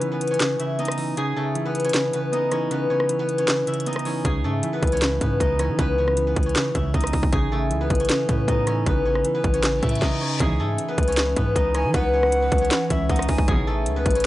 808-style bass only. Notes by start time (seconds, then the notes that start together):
4.25 C#2
4.44 G#2
4.83 C#2
5.21 G#2
5.40 C#2
5.69 E3
5.79 C#2
6.36 C#2
6.75 C#2
6.94 C#2
7.13 C#2
7.33 A1
7.71 C#2
7.90 A1
8.29 A2
8.48 A2
8.86 A1
9.44 A1
9.83 A2
10.40 C#2
10.60 G#2
10.98 C#2
11.37 G#2
11.56 C#2
11.85 E3
11.94 C#2
12.52 C#2
12.90 C#2
13.10 C#2
13.29 C#2
13.48 A1
13.86 C#2
14.06 A1